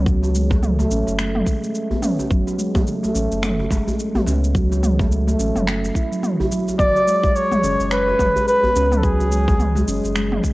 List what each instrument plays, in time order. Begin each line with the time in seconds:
Already playing: sub bass C#2
0.06 handpan F#3, kick, shaker
0.23 djembe slap, djembe tone, shaker
0.35 handpan G#3, shaker
0.50 handpan A3, kick, djembe slap, djembe tone, djembe bass, shaker
0.63 mid tom, shaker
0.79 handpan A3, djembe tone, shaker
0.91 sub bass A1, handpan C#4, shaker
1.07 sub bass F#1, djembe slap, shaker
1.19 handpan A3, finger snap, shaker
1.35 mid tom
1.46 handpan G#3, kick, shaker
1.63 handpan A3, shaker
1.75 shaker
1.91 handpan B3, djembe bass
2.02 handpan C#4, mid tom, shaker
2.19 djembe tone, shaker
2.31 sub bass F#1, handpan F#3, kick, shaker
2.47 djembe slap, djembe tone, shaker
2.59 handpan G#3, shaker
2.75 handpan A3, kick, mid tom, djembe slap, djembe tone, djembe bass, shaker
2.87 shaker
3.03 handpan A3, djembe tone, shaker
3.15 sub bass A1, handpan C#4, shaker
3.31 sub bass F#1, djembe slap, shaker
3.43 handpan A3, finger snap, mid tom, shaker
3.59 djembe tone
3.71 sub bass F#1, handpan G#3, kick, djembe slap, shaker
3.87 handpan A3, djembe tone, djembe bass, shaker
4.00 shaker
4.15 handpan B3, mid tom, djembe bass
4.26 sub bass C#2, handpan C#4, djembe slap, shaker
4.44 shaker
4.55 handpan F#3, kick, shaker
4.71 djembe slap, djembe tone, shaker
4.83 handpan G#3, mid tom, shaker
4.99 handpan A3, kick, djembe slap, djembe tone, djembe bass, shaker
5.12 shaker
5.27 handpan A3, djembe tone, shaker
5.39 sub bass A1, handpan C#4, shaker
5.56 sub bass F#1, mid tom, djembe slap, shaker
5.67 handpan A3, finger snap, shaker
5.84 shaker
5.95 handpan E4, kick, shaker
6.12 handpan F#3, shaker
6.23 mid tom, shaker
6.40 handpan E4, djembe bass
6.51 handpan F#3, shaker
6.68 djembe tone, shaker
6.79 sub bass F#1, muted trumpet D5, kick, mid tom, shaker
6.96 djembe slap, djembe tone, shaker
7.07 handpan G#3, shaker
7.24 kick, djembe slap, djembe tone, djembe bass, shaker
7.35 muted trumpet C#5, shaker
7.52 handpan G#3, mid tom, djembe tone, shaker
7.63 sub bass F#1, handpan C#4, shaker
7.80 sub bass F#1, djembe slap, shaker
7.91 handpan G#3, muted trumpet B4, finger snap, shaker
8.08 djembe tone
8.19 sub bass F#1, handpan G#3, kick, mid tom, djembe slap, shaker
8.36 handpan G#3, djembe tone, djembe bass, shaker
8.48 muted trumpet B4, shaker
8.63 handpan B3, djembe bass
8.76 sub bass C#2, handpan C#4, djembe slap, shaker
8.92 mid tom, shaker
8.97 muted trumpet A4
9.03 handpan F#3, muted trumpet G#4, kick, shaker
9.20 djembe slap, djembe tone, shaker
9.32 handpan G#3, shaker
9.48 handpan G#3, kick, djembe slap, djembe tone, djembe bass, shaker
9.59 mid tom, shaker
9.75 handpan G#3, djembe tone, shaker
9.88 sub bass F#1, handpan C#4, shaker
10.04 sub bass F#1, djembe slap, shaker
10.16 handpan G#3, finger snap, shaker
10.32 mid tom
10.44 handpan G#3, kick, shaker